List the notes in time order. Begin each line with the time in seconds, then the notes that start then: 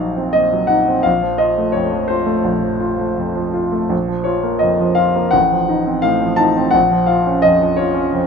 Already playing: A#1 F#3 D#4 F5
0.17 C4
0.33 A#2 D#5
0.53 F#3
0.67 D#4 F#5
0.88 C4
1.03 A#1 F5
1.23 F3
1.38 F4 D#5
1.58 A3
1.72 F2 C#5
1.92 F3
2.08 F4 C5
2.26 A3
2.44 A#1
2.63 F3
2.80 F4
2.99 A3
3.17 F2
3.35 F3
3.54 F4
3.72 A3
3.89 A#1
4.08 F3
4.24 F4 C#5
4.43 A#3
4.59 F2 D#5
4.80 F3
4.95 F4 F5
5.16 A#3
5.31 A1 F#5
5.52 F3
5.69 D#4
5.87 C4
6.02 A2 F5
6.21 F3
6.36 D#4 A5
6.57 C4
6.71 A#1 F#5
6.91 F3
7.06 F4 F5
7.27 C#4
7.42 F2 D#5
7.61 F3
7.76 F4 C#5
7.94 C#4
8.12 F2